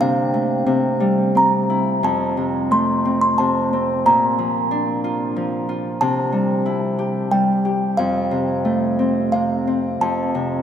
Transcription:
0, 0, Header, 1, 3, 480
1, 0, Start_track
1, 0, Key_signature, -1, "major"
1, 0, Tempo, 674916
1, 2, Time_signature, 3, 2, 24, 8
1, 2882, Tempo, 652884
1, 5282, Tempo, 674157
1, 7634, End_track
2, 0, Start_track
2, 0, Title_t, "Music box"
2, 0, Program_c, 0, 10
2, 5, Note_on_c, 0, 77, 75
2, 689, Note_off_c, 0, 77, 0
2, 975, Note_on_c, 0, 82, 66
2, 1309, Note_off_c, 0, 82, 0
2, 1454, Note_on_c, 0, 81, 70
2, 1933, Note_on_c, 0, 84, 81
2, 1945, Note_off_c, 0, 81, 0
2, 2264, Note_off_c, 0, 84, 0
2, 2286, Note_on_c, 0, 84, 78
2, 2405, Note_on_c, 0, 81, 64
2, 2409, Note_off_c, 0, 84, 0
2, 2851, Note_off_c, 0, 81, 0
2, 2889, Note_on_c, 0, 82, 69
2, 4056, Note_off_c, 0, 82, 0
2, 4321, Note_on_c, 0, 81, 87
2, 5010, Note_off_c, 0, 81, 0
2, 5281, Note_on_c, 0, 79, 82
2, 5750, Note_on_c, 0, 77, 73
2, 5767, Note_off_c, 0, 79, 0
2, 6439, Note_off_c, 0, 77, 0
2, 6710, Note_on_c, 0, 77, 72
2, 7051, Note_off_c, 0, 77, 0
2, 7202, Note_on_c, 0, 81, 87
2, 7634, Note_off_c, 0, 81, 0
2, 7634, End_track
3, 0, Start_track
3, 0, Title_t, "Harp"
3, 0, Program_c, 1, 46
3, 0, Note_on_c, 1, 58, 50
3, 0, Note_on_c, 1, 62, 45
3, 3, Note_on_c, 1, 48, 58
3, 240, Note_on_c, 1, 57, 42
3, 283, Note_off_c, 1, 58, 0
3, 464, Note_off_c, 1, 48, 0
3, 473, Note_on_c, 1, 48, 58
3, 713, Note_on_c, 1, 55, 46
3, 960, Note_on_c, 1, 60, 43
3, 1207, Note_on_c, 1, 64, 43
3, 1445, Note_on_c, 1, 41, 60
3, 1483, Note_off_c, 1, 48, 0
3, 1483, Note_off_c, 1, 55, 0
3, 1487, Note_off_c, 1, 64, 0
3, 1687, Note_on_c, 1, 48, 42
3, 1756, Note_off_c, 1, 62, 0
3, 1924, Note_off_c, 1, 57, 0
3, 1927, Note_on_c, 1, 57, 49
3, 2168, Note_off_c, 1, 60, 0
3, 2171, Note_on_c, 1, 60, 48
3, 2403, Note_off_c, 1, 48, 0
3, 2411, Note_on_c, 1, 48, 46
3, 2650, Note_off_c, 1, 60, 0
3, 2653, Note_on_c, 1, 60, 45
3, 2885, Note_on_c, 1, 46, 61
3, 2917, Note_off_c, 1, 41, 0
3, 2917, Note_off_c, 1, 48, 0
3, 2929, Note_off_c, 1, 57, 0
3, 3127, Note_on_c, 1, 53, 42
3, 3366, Note_on_c, 1, 62, 50
3, 3609, Note_on_c, 1, 65, 47
3, 3838, Note_off_c, 1, 53, 0
3, 3847, Note_on_c, 1, 53, 47
3, 4082, Note_off_c, 1, 65, 0
3, 4085, Note_on_c, 1, 65, 46
3, 4322, Note_on_c, 1, 48, 61
3, 4355, Note_off_c, 1, 46, 0
3, 4355, Note_off_c, 1, 53, 0
3, 4552, Note_on_c, 1, 55, 44
3, 4797, Note_on_c, 1, 64, 49
3, 4841, Note_off_c, 1, 65, 0
3, 4851, Note_off_c, 1, 60, 0
3, 5039, Note_on_c, 1, 67, 46
3, 5269, Note_off_c, 1, 55, 0
3, 5278, Note_on_c, 1, 55, 45
3, 5420, Note_off_c, 1, 62, 0
3, 5516, Note_off_c, 1, 67, 0
3, 5519, Note_on_c, 1, 67, 46
3, 5757, Note_on_c, 1, 41, 57
3, 5789, Note_off_c, 1, 48, 0
3, 5789, Note_off_c, 1, 55, 0
3, 5800, Note_off_c, 1, 64, 0
3, 5990, Note_on_c, 1, 48, 42
3, 6231, Note_on_c, 1, 57, 50
3, 6473, Note_on_c, 1, 60, 47
3, 6708, Note_off_c, 1, 48, 0
3, 6717, Note_on_c, 1, 48, 40
3, 6957, Note_off_c, 1, 60, 0
3, 6960, Note_on_c, 1, 60, 42
3, 7191, Note_off_c, 1, 41, 0
3, 7195, Note_off_c, 1, 67, 0
3, 7200, Note_on_c, 1, 41, 59
3, 7234, Note_off_c, 1, 48, 0
3, 7440, Note_on_c, 1, 48, 45
3, 7634, Note_off_c, 1, 41, 0
3, 7634, Note_off_c, 1, 48, 0
3, 7634, Note_off_c, 1, 57, 0
3, 7634, Note_off_c, 1, 60, 0
3, 7634, End_track
0, 0, End_of_file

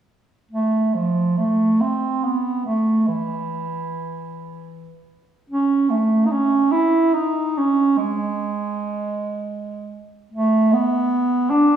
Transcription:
0, 0, Header, 1, 2, 480
1, 0, Start_track
1, 0, Tempo, 870827
1, 277, Time_signature, 3, 2, 24, 8
1, 1231, Tempo, 820793
1, 4591, Tempo, 783290
1, 6911, End_track
2, 0, Start_track
2, 0, Title_t, "Bass clarinet"
2, 0, Program_c, 0, 71
2, 283, Note_on_c, 0, 57, 50
2, 521, Note_on_c, 0, 53, 46
2, 529, Note_off_c, 0, 57, 0
2, 758, Note_on_c, 0, 57, 53
2, 766, Note_off_c, 0, 53, 0
2, 997, Note_on_c, 0, 60, 50
2, 1005, Note_off_c, 0, 57, 0
2, 1235, Note_on_c, 0, 59, 46
2, 1244, Note_off_c, 0, 60, 0
2, 1475, Note_off_c, 0, 59, 0
2, 1478, Note_on_c, 0, 57, 51
2, 1723, Note_on_c, 0, 52, 49
2, 1732, Note_off_c, 0, 57, 0
2, 2907, Note_off_c, 0, 52, 0
2, 3141, Note_on_c, 0, 61, 59
2, 3374, Note_on_c, 0, 57, 52
2, 3383, Note_off_c, 0, 61, 0
2, 3584, Note_on_c, 0, 63, 44
2, 3592, Note_off_c, 0, 57, 0
2, 3619, Note_on_c, 0, 61, 61
2, 3627, Note_off_c, 0, 63, 0
2, 3854, Note_on_c, 0, 64, 64
2, 3863, Note_off_c, 0, 61, 0
2, 4100, Note_on_c, 0, 63, 57
2, 4109, Note_off_c, 0, 64, 0
2, 4357, Note_on_c, 0, 61, 69
2, 4366, Note_off_c, 0, 63, 0
2, 4589, Note_on_c, 0, 56, 60
2, 4598, Note_off_c, 0, 61, 0
2, 5799, Note_off_c, 0, 56, 0
2, 6029, Note_on_c, 0, 57, 67
2, 6276, Note_on_c, 0, 59, 72
2, 6285, Note_off_c, 0, 57, 0
2, 6751, Note_on_c, 0, 62, 80
2, 6760, Note_off_c, 0, 59, 0
2, 6911, Note_off_c, 0, 62, 0
2, 6911, End_track
0, 0, End_of_file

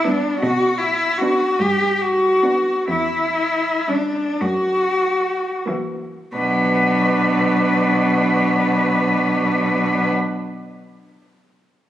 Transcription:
0, 0, Header, 1, 5, 480
1, 0, Start_track
1, 0, Key_signature, 2, "minor"
1, 0, Tempo, 783290
1, 259, Time_signature, 6, 3, 24, 8
1, 1231, Tempo, 881057
1, 1711, Tempo, 988468
1, 2191, Tempo, 1134216
1, 2671, Tempo, 1348315
1, 3631, Tempo, 1276596
1, 5206, End_track
2, 0, Start_track
2, 0, Title_t, "Cello"
2, 0, Program_c, 0, 42
2, 26, Note_on_c, 0, 62, 49
2, 243, Note_off_c, 0, 62, 0
2, 247, Note_on_c, 0, 66, 56
2, 479, Note_on_c, 0, 64, 50
2, 488, Note_off_c, 0, 66, 0
2, 722, Note_on_c, 0, 66, 50
2, 731, Note_off_c, 0, 64, 0
2, 982, Note_on_c, 0, 67, 50
2, 992, Note_off_c, 0, 66, 0
2, 1229, Note_on_c, 0, 66, 51
2, 1237, Note_off_c, 0, 67, 0
2, 1710, Note_off_c, 0, 66, 0
2, 1717, Note_on_c, 0, 64, 48
2, 2197, Note_on_c, 0, 62, 39
2, 2203, Note_off_c, 0, 64, 0
2, 2418, Note_on_c, 0, 66, 38
2, 2424, Note_off_c, 0, 62, 0
2, 2906, Note_off_c, 0, 66, 0
2, 3154, Note_on_c, 0, 71, 31
2, 4526, Note_off_c, 0, 71, 0
2, 5206, End_track
3, 0, Start_track
3, 0, Title_t, "Cello"
3, 0, Program_c, 1, 42
3, 26, Note_on_c, 1, 59, 39
3, 198, Note_off_c, 1, 59, 0
3, 745, Note_on_c, 1, 62, 35
3, 922, Note_off_c, 1, 62, 0
3, 1463, Note_on_c, 1, 62, 36
3, 1646, Note_off_c, 1, 62, 0
3, 2192, Note_on_c, 1, 61, 31
3, 2361, Note_off_c, 1, 61, 0
3, 2901, Note_on_c, 1, 58, 25
3, 3088, Note_off_c, 1, 58, 0
3, 3152, Note_on_c, 1, 62, 25
3, 4524, Note_off_c, 1, 62, 0
3, 5206, End_track
4, 0, Start_track
4, 0, Title_t, "Cello"
4, 0, Program_c, 2, 42
4, 36, Note_on_c, 2, 55, 34
4, 204, Note_off_c, 2, 55, 0
4, 745, Note_on_c, 2, 59, 36
4, 922, Note_off_c, 2, 59, 0
4, 1461, Note_on_c, 2, 59, 34
4, 1645, Note_off_c, 2, 59, 0
4, 2191, Note_on_c, 2, 55, 28
4, 2361, Note_off_c, 2, 55, 0
4, 2907, Note_on_c, 2, 52, 26
4, 3091, Note_off_c, 2, 52, 0
4, 3151, Note_on_c, 2, 54, 27
4, 4522, Note_off_c, 2, 54, 0
4, 5206, End_track
5, 0, Start_track
5, 0, Title_t, "Cello"
5, 0, Program_c, 3, 42
5, 0, Note_on_c, 3, 47, 44
5, 130, Note_off_c, 3, 47, 0
5, 262, Note_on_c, 3, 47, 47
5, 847, Note_off_c, 3, 47, 0
5, 978, Note_on_c, 3, 43, 44
5, 1575, Note_off_c, 3, 43, 0
5, 1705, Note_on_c, 3, 40, 42
5, 2296, Note_off_c, 3, 40, 0
5, 2417, Note_on_c, 3, 42, 33
5, 3029, Note_off_c, 3, 42, 0
5, 3151, Note_on_c, 3, 47, 27
5, 4523, Note_off_c, 3, 47, 0
5, 5206, End_track
0, 0, End_of_file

